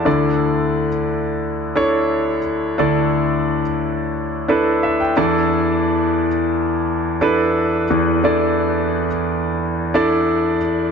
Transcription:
<<
  \new Staff \with { instrumentName = "Grand piano" } { \time 4/4 \key a \mixolydian \tempo 4 = 88 << { r1 | r2. e''16 g''16 a''8 | r1 | r1 | } \\ { <d' e' a' d''>4 r4. <d' e' a' cis''>4 r8 | <d' e' a' d''>4 r4. <d' e' a' b'>4 <d' e' a' d''>8~ | <d' e' a' d''>4 r4. <d' e' a' b'>4 r8 | <d' e' a' d''>4 r4. <d' e' a' d''>4 r8 | } >> }
  \new Staff \with { instrumentName = "Grand piano" } { \clef bass \time 4/4 \key a \mixolydian <d, d>1 | <d, d>2.~ <d, d>8 <e, e>8~ | <e, e>2.~ <e, e>8 <e, e>8~ | <e, e>2.~ <e, e>8 r8 | }
>>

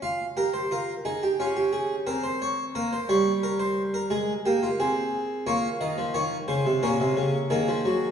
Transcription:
<<
  \new Staff \with { instrumentName = "Harpsichord" } { \time 4/4 \key f \phrygian \tempo 4 = 88 << { f''8 bes'16 c''16 bes'8 aes'16 g'16 f'16 g'16 aes'8 bes'16 c''16 des''8 | bes'16 c''16 des''8 bes'16 c''8 bes'16 aes'8 g'16 f'16 aes'4 | des''8 ees''8 des''8 c''8 bes'4 aes'4 | } \\ { f'8 g'8 f'8 ees'8 des'4 c'4 | bes8 g4. aes8 bes8 c'4 | f'2 des'4 bes4 | } >> }
  \new Staff \with { instrumentName = "Harpsichord" } { \clef bass \time 4/4 \key f \phrygian r1 | r1 | bes8 ees16 f16 ees8 des16 c16 bes,16 c16 des8 ees16 f16 ges8 | }
>>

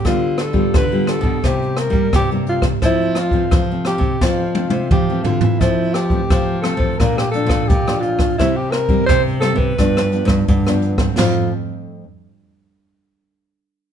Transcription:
<<
  \new Staff \with { instrumentName = "Alto saxophone" } { \time 4/4 \key f \major \tempo 4 = 86 f'8 a'8 b'8 a'8 g'8 bes'8 g'8 f'8 | e'8 f'8 r8 g'8 f'4 g'8 f'8 | e'8 g'4 a'8 bes'16 g'16 a'8 g'8 f'8 | e'16 g'16 bes'8 c''8 a'16 b'4~ b'16 r4 |
f'8 r2. r8 | }
  \new Staff \with { instrumentName = "Nylon-string guitar" } { \time 4/4 \key f \major << { <g b f'>8. <g b f'>8 <g b f'>8 <g bes e'>4 <g bes e'>8 <g bes e'>8. | <a c'>8. <e a c'>8 <a c'>8. <e a c'>16 r16 <a c'>8 r16 <e a c'>8. | <a c'>8. <e a c'>8. <e a c'>8 <f a d'>16 r16 <f a d'>8 r16 <f a d'>8. | <g c' e'>8 r16 <g c' e'>8. <g c' e'>8 <f b d'>8 <f b d'>8 r16 <f b d'>8 <a c'>16~ |
<a c'>8. r2. r16 | } \\ { d4 d4 c4 g,4 | f,4 c4 f,4 c4 | f,4 c4 bes,4 f,4 | c4 g,4 g,4 d4 |
<f, a c'>8 r2. r8 | } >> }
  \new Staff \with { instrumentName = "Nylon-string guitar" } { \clef bass \time 4/4 \key f \major d4 d8. b,16 c8. g16 c4 | f4 f8. c16 f8. c16 f8 d16 e16 | f4 f8. f16 bes,8. bes,16 bes,4 | c4 c8. c16 g,8. g,16 g,4 |
f,8 r2. r8 | }
  \new DrumStaff \with { instrumentName = "Drums" } \drummode { \time 4/4 <hh bd ss>8 <hh ss>16 bd16 <hh bd ss>8 <hh ss>16 bd16 <hh bd ss>16 hh16 <hh ss>16 <hh bd>16 <hh bd ss>8 hh16 <bd ss>16 | <hh bd ss>8 <hh ss>16 <hh bd>16 <hh bd ss>8 <hh ss>16 <hh bd>16 <bd sn>8 tommh16 tommh16 <bd toml>8 tomfh16 tomfh16 | <hh bd ss>8 <hh ss>16 bd16 <hh bd ss>8 <hh ss>16 bd16 <hh bd ss>16 <hh ss>16 hh16 <bd ss>16 <hh bd>16 ss16 hh16 <bd ss>16 | <hh bd ss>8 <hh ss>16 bd16 <hh bd ss>16 hh16 <hh ss>16 bd16 <hh bd ss>16 <hh ss>16 hh16 <hh bd ss>16 <hh bd>16 <hh ss>16 hh16 <bd ss>16 |
<cymc sn tomfh>4 r4 r4 r4 | }
>>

